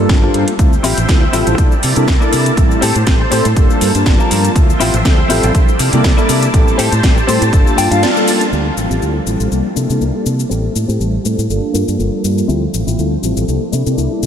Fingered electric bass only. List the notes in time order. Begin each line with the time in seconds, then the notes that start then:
0.09 G1
0.34 G2
0.59 D2
0.84 A1
0.98 A1
1.34 A1
1.47 A1
1.58 C2
1.83 C3
1.97 C3
2.08 C2
2.33 C3
2.57 A1
2.82 A2
2.96 A2
3.07 A1
3.32 A2
3.45 A2
3.56 G1
3.81 G2
3.95 G2
4.06 G1
4.31 G2
4.55 D2
4.81 A1
4.94 A1
5.05 D2
5.30 A1
5.43 A1
5.79 C3
5.93 C3
6.04 C2
6.29 C3
6.54 A1
6.79 A2
6.92 A2
7.03 A1
7.28 A2
7.42 A2
7.53 G1
7.78 G2
7.91 G2
8.52 D2
8.77 A1
8.90 A1
9.02 D2
9.26 A1
9.40 A1
9.51 C2
9.76 C3
9.90 C3
10.01 C2
10.26 C3
10.51 A1
10.75 A2
10.89 A2
11.00 A1
11.25 A2
11.38 A2
11.49 G1
11.74 G2
11.88 G2
11.99 G1
12.24 G2
12.49 D2
12.74 A1
12.87 A1
12.99 D2
13.23 A1
13.37 A1
13.48 C2
13.73 C3
13.86 C3
13.97 C2
14.23 C3